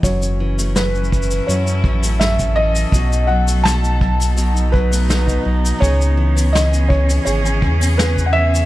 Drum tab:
HH |o-----o-o-----o-o-----o-o-----o-|o-----o-o-----o-o-----o-o-----o-|o-----o-o-----o-o-----o-o-----o-|
SH |x-x---x-x-xxxxx-x-x---x-x-x---x-|x-x---x-x-x---x-x-x---x-x-x---x-|x-x---x-x-x---x-x-x---x-x-x---x-|
SD |--------o---------------o-------|--------o---------------o-------|--------o---------------o-------|
BD |o-----------o-------o-----o-----|o-----------o-------o-----o-----|o-----------o-------o-----o-----|